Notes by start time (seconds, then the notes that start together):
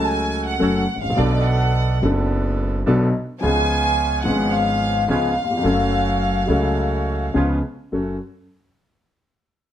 Already playing: C#2 C#3 F#3 A3 C#4 F#4 A4
0.06 G#5
0.47 F#5
0.59 F#1 F#2 F#3 A3 C#4 F#4 A4
0.96 G#1
1.02 A1 F5
1.10 A#1
1.16 B1 B2 F#3 B3 D4 A4 D5
1.44 F#5
2.02 F#1 F#2 F#3 B3 D4 A4
2.86 B1 B2 F#3 B3 D4 A4
3.41 C#2 C#3 F3 B3 C#4 F4 G#5
3.45 G#4
4.24 G#1 G#2 F3 B3 C#4 F4 F#5
4.28 G#4
4.54 F5
5.08 C#2 C#3 F3 B3 C#4 F4 G#4 F5
5.44 D#2
5.51 E2
5.57 F2
5.62 F#1 F#2 F#3 A3 C#4 F#4 A4
6.46 C#2 C#3 F#3 A3 C#4 F#4
6.50 A4
7.34 C#2 C#3 F3 B3 C#4 F4 G#4
7.92 F#1 F#2 A3 C#4 F#4 A4